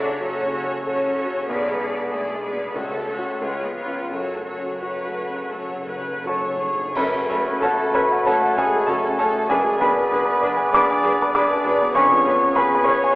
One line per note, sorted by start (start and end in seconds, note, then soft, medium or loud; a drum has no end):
0.00 0.16 F#1 medium
0.00 0.20 F#2 medium
0.00 0.35 C#3 soft
0.00 0.21 F#3 medium
0.00 0.64 C#4 medium
0.00 0.23 D4 medium
0.00 0.21 F#4 soft
0.00 0.20 A4 soft
0.00 0.86 A4 medium
0.00 0.22 C#5 soft
0.00 0.22 D5 medium
0.21 0.78 F#1 medium
0.21 0.55 F#3 soft
0.21 0.84 C#4 medium
0.21 0.52 F#4 medium
0.21 0.52 A4 medium
0.21 0.85 C#5 medium
0.21 0.52 C#5 soft
0.43 0.77 C#3 soft
0.53 0.84 F#4 medium
0.53 0.84 A4 soft
0.53 0.85 C#5 soft
0.64 0.98 C#4 soft
0.85 1.42 F#1 medium
0.85 1.48 C#4 medium
0.85 1.16 F#4 soft
0.85 1.17 A4 soft
0.85 1.20 A4 medium
0.85 1.16 C#5 soft
0.85 1.48 C#5 medium
1.07 1.41 F#3 soft
1.17 1.48 F#4 soft
1.17 1.49 A4 soft
1.17 1.48 C#5 soft
1.27 1.49 C#3 soft
1.48 2.04 B1 medium
1.48 2.71 B1 medium
1.48 2.10 B3 medium
1.48 1.78 G#4 medium
1.48 2.13 B4 soft
1.48 1.79 D5 soft
1.71 2.04 G#3 soft
1.80 2.10 G#4 soft
1.80 2.10 D5 soft
1.91 2.24 D4 soft
2.11 2.67 B1 soft
2.11 2.43 A3 medium
2.11 2.41 G#4 soft
2.11 2.45 G#4 soft
2.11 2.43 A4 soft
2.11 2.42 D5 soft
2.33 2.66 G#3 soft
2.42 2.74 B3 medium
2.42 2.74 G#4 soft
2.42 2.75 B4 soft
2.42 2.75 D5 soft
2.53 2.75 B2 soft
2.74 3.33 C#2 medium
2.74 3.39 C#2 medium
2.74 3.37 C#3 medium
2.74 3.41 A3 medium
2.74 3.07 F#4 soft
2.74 3.41 A4 medium
2.74 3.07 A4 soft
2.74 3.07 C#5 soft
2.98 3.33 A3 soft
3.08 3.41 F#4 soft
3.08 3.41 A4 soft
3.08 3.42 C#5 soft
3.18 3.39 C#4 soft
3.18 3.39 F#4 soft
3.40 4.02 C#2 soft
3.40 4.08 C#2 soft
3.40 3.75 G#3 medium
3.40 3.75 F4 soft
3.40 3.76 G#4 soft
3.40 3.75 B4 soft
3.40 3.75 C#5 soft
3.64 4.01 B3 soft
3.75 4.10 F3 medium
3.75 4.10 F4 soft
3.75 4.10 B4 soft
3.75 4.10 C#5 soft
3.85 4.07 C#4 soft
3.85 4.08 F4 soft
4.09 4.72 F#2 soft
4.09 5.47 F#2 soft
4.09 6.62 F#3 medium
4.09 4.43 F#4 soft
4.09 6.27 F#4 soft
4.09 4.44 A4 soft
4.09 4.45 C#5 soft
4.35 4.72 A3 soft
4.45 4.80 F#4 soft
4.45 4.80 A4 soft
4.45 4.81 C#5 soft
4.51 4.57 F#2 soft
4.59 4.67 F#2 soft
4.59 4.96 C#4 soft
4.68 4.76 F#2 soft
4.80 5.43 F#2 soft
4.80 5.19 F#4 soft
4.80 5.47 B4 soft
4.80 5.16 C#5 soft
4.85 4.92 F#2 soft
4.94 5.02 F#2 soft
5.03 5.10 F#2 soft
5.08 5.18 F#2 soft
5.08 5.44 A3 soft
5.17 5.27 F#2 soft
5.17 5.51 C#5 soft
5.30 5.67 C#3 soft
5.36 5.43 F#2 soft
5.45 5.52 F#2 soft
5.50 6.17 F#2 soft
5.50 5.60 F#2 soft
5.50 5.91 A3 soft
5.50 5.88 A4 soft
5.50 5.87 C#5 soft
5.61 5.68 F#2 soft
5.69 5.76 F#2 soft
5.75 5.85 F#2 soft
5.75 6.16 C#3 soft
5.86 5.95 F#2 medium
5.86 6.26 B4 medium
5.86 6.26 C#5 soft
5.96 6.03 F#2 medium
6.01 6.12 F#2 medium
6.01 6.41 C#4 soft
6.13 6.21 F#2 medium
6.22 6.30 F#2 medium
6.22 6.88 F#2 soft
6.22 6.91 C#4 medium
6.22 6.64 F#4 soft
6.22 6.62 A4 soft
6.27 6.92 C#5 medium
6.27 6.62 C#5 soft
6.27 6.93 C#5 soft
6.27 6.93 A5 soft
6.27 6.98 C#6 medium
6.27 6.92 C#6 medium
6.31 6.40 F#2 medium
6.41 6.47 F#2 medium
6.49 6.56 F#2 medium
6.49 6.87 A3 soft
6.57 6.64 F#2 medium
6.61 6.96 G#4 soft
6.61 6.95 C#5 soft
6.66 6.72 F#2 medium
6.74 6.80 F#2 medium
6.74 6.97 C#3 soft
6.81 6.89 F#2 medium
6.95 7.04 F#1 medium
6.95 7.90 F#2 medium
6.95 7.04 F#2 medium
6.95 9.47 F#2 medium
6.95 9.46 A3 medium
6.95 7.62 B3 medium
6.95 7.04 C#4 medium
6.95 9.52 F#4 medium
6.95 7.04 A4 medium
6.95 7.62 B4 medium
6.95 7.59 B4 medium
6.95 9.51 C#5 medium
6.95 7.04 C#5 medium
6.95 7.63 B5 medium
6.95 7.58 B5 medium
6.95 concert bass drum medium
6.95 crash medium
7.15 7.40 C#3 medium
7.28 7.36 F#1 medium
7.28 7.37 F#2 medium
7.28 7.37 C#4 soft
7.28 7.36 A4 medium
7.28 7.37 C#5 medium
7.33 7.58 A3 soft
7.47 7.73 C#4 medium
7.61 7.70 F#1 medium
7.61 7.69 F#2 medium
7.61 7.95 A3 medium
7.61 7.69 C#4 medium
7.61 7.89 F#4 medium
7.61 7.69 A4 medium
7.61 7.94 A4 medium
7.61 7.76 A4 medium
7.61 7.70 C#5 medium
7.61 7.93 F#5 medium
7.61 7.96 A5 medium
7.61 7.92 A5 medium
7.78 8.04 A4 medium
7.93 8.02 F#1 medium
7.93 8.01 F#2 medium
7.93 8.27 B3 medium
7.93 8.01 C#4 medium
7.93 8.02 A4 soft
7.93 8.26 B4 medium
7.93 8.24 B4 medium
7.93 8.02 C#5 medium
7.93 8.20 C#5 medium
7.93 8.27 B5 medium
7.93 8.24 B5 medium
8.12 8.27 F#5 medium
8.25 8.33 F#1 medium
8.25 8.33 F#2 medium
8.25 8.57 A3 medium
8.25 8.34 C#4 medium
8.25 8.34 A4 medium
8.25 8.57 A4 medium
8.25 8.56 A4 medium
8.25 8.33 C#5 medium
8.25 8.51 C#5 medium
8.25 8.40 F#5 medium
8.25 8.57 A5 medium
8.25 8.55 A5 medium
8.42 8.67 F#5 medium
8.56 8.64 F#1 medium
8.56 8.64 F#2 medium
8.56 8.89 G#3 medium
8.56 8.65 C#4 medium
8.56 8.88 G#4 medium
8.56 8.87 G#4 medium
8.56 8.65 A4 medium
8.56 8.65 C#5 soft
8.56 8.83 C#5 medium
8.56 8.87 G#5 medium
8.74 8.88 A4 medium
8.87 8.96 F#1 medium
8.87 8.96 F#2 medium
8.87 9.16 A3 medium
8.87 8.95 C#4 medium
8.87 9.14 F#4 medium
8.87 8.95 A4 medium
8.87 9.18 A4 medium
8.87 8.97 C#5 soft
8.87 9.18 F#5 medium
8.87 9.16 A5 medium
8.87 9.18 A5 medium
9.05 9.29 C#4 medium
9.18 9.27 F#1 medium
9.18 9.26 F#2 medium
9.18 9.44 C#3 medium
9.18 9.49 A3 medium
9.18 9.26 C#4 medium
9.18 9.27 A4 medium
9.18 9.49 A4 medium
9.18 9.48 A4 medium
9.18 9.27 C#5 medium
9.18 9.50 A5 medium
9.18 9.48 A5 medium
9.35 9.50 A3 soft
9.49 9.58 F#1 medium
9.49 9.57 F#2 medium
9.49 11.91 F#2 medium
9.49 9.81 G#3 medium
9.49 13.15 B3 medium
9.49 9.58 D4 medium
9.49 13.15 G#4 medium
9.49 9.58 G#4 medium
9.49 9.81 G#4 medium
9.49 9.79 G#4 medium
9.49 9.58 B4 medium
9.49 11.96 D5 medium
9.49 9.79 D5 medium
9.49 9.79 G#5 medium
9.64 9.90 F#3 soft
9.77 9.88 F#1 medium
9.77 9.88 F#2 medium
9.77 10.73 B3 medium
9.77 10.05 B3 soft
9.77 9.89 D4 medium
9.77 9.89 G#4 medium
9.77 10.55 G#5 medium
9.77 10.72 B5 medium
9.77 10.69 B5 medium
9.81 10.74 B4 medium
9.81 10.24 B4 medium
9.81 9.91 B4 medium
9.95 10.21 D4 medium
10.11 10.19 F#1 medium
10.11 10.19 F#2 medium
10.11 10.20 D4 medium
10.11 10.37 G#4 medium
10.11 10.20 G#4 medium
10.11 10.22 B4 medium
10.25 10.51 B4 medium
10.41 10.50 F#1 medium
10.41 10.50 F#2 medium
10.41 10.51 D4 medium
10.41 10.50 G#4 medium
10.41 10.53 B4 soft
10.41 10.67 D5 medium
10.57 10.82 G#5 medium
10.70 10.80 F#1 medium
10.70 10.80 F#2 medium
10.70 10.82 D4 medium
10.70 11.33 D4 medium
10.70 10.81 G#4 medium
10.70 10.98 D5 medium
10.70 11.34 D5 medium
10.70 11.32 D6 medium
10.74 10.83 B4 medium
10.74 11.33 B5 medium
10.74 11.31 D6 loud
10.90 11.14 G#5 medium
11.03 11.11 F#1 medium
11.03 11.12 F#2 medium
11.03 11.12 D4 medium
11.03 11.12 G#4 medium
11.03 11.13 B4 medium
11.03 11.29 D5 medium
11.22 11.45 B4 medium
11.32 11.41 F#1 medium
11.32 11.42 F#2 medium
11.32 11.42 D4 medium
11.32 11.94 D4 medium
11.32 11.42 G#4 medium
11.32 11.44 B4 medium
11.32 11.95 D5 medium
11.32 11.72 D6 medium
11.32 11.92 D6 medium
11.36 11.61 G#4 medium
11.36 11.93 D5 medium
11.36 11.93 B5 medium
11.53 11.76 D4 medium
11.64 11.72 F#1 medium
11.64 11.72 F#2 medium
11.64 11.90 F#3 medium
11.64 11.73 D4 medium
11.64 11.72 G#4 medium
11.68 11.76 B4 medium
11.82 11.96 B3 medium
11.94 12.03 F1 medium
11.94 12.03 F2 medium
11.94 13.15 F2 medium
11.94 12.03 C#4 medium
11.94 12.56 C#4 medium
11.94 12.03 G#4 medium
11.94 12.06 B4 medium
11.94 12.52 C#5 medium
11.94 13.15 C#5 medium
11.94 12.56 C#5 medium
11.94 12.52 G#5 medium
11.94 12.57 C#6 medium
11.94 12.52 C#6 loud
12.12 12.36 F3 medium
12.25 12.33 F1 medium
12.25 12.33 F2 medium
12.25 12.51 B3 medium
12.25 12.33 C#4 medium
12.25 12.33 G#4 medium
12.29 12.37 B4 medium
12.44 12.67 C#4 medium
12.55 12.64 F1 medium
12.55 12.63 F2 medium
12.55 12.86 B3 medium
12.55 12.63 C#4 medium
12.55 12.63 G#4 medium
12.55 12.73 B4 medium
12.55 12.86 B4 medium
12.55 12.85 G#5 medium
12.55 12.87 B5 medium
12.55 12.84 B5 medium
12.59 12.82 G#4 medium
12.59 12.67 B4 medium
12.75 12.97 B4 medium
12.84 12.94 F1 medium
12.84 12.93 F2 medium
12.84 12.92 C#4 medium
12.84 13.15 C#4 medium
12.84 12.92 G#4 medium
12.84 12.89 C#5 medium
12.84 13.15 C#5 medium
12.84 13.12 C#6 medium
12.84 13.15 C#6 medium
12.88 12.96 B4 medium
12.88 13.12 C#5 medium
13.04 13.15 G#5 medium